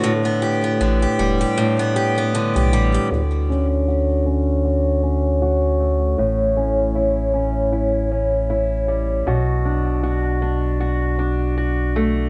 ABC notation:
X:1
M:4/4
L:1/16
Q:"Swing 16ths" 1/4=78
K:D
V:1 name="Steel-string acoustic guitar"
A,, B, G B, D, G G, G A,, B, G B, D, G G, G | [D,F]2 C2 F2 C2 F2 C2 F2 A,2 | [A,,E]2 C2 E2 C2 E2 C2 E2 G,2 | [B,,F]2 D2 F2 D2 F2 D2 F2 A,2 |]
V:2 name="Sub bass" clef=bass
z4 A,,, z E,,, z6 B,,, A,,, z | D,,16 | A,,,16 | B,,,16 |]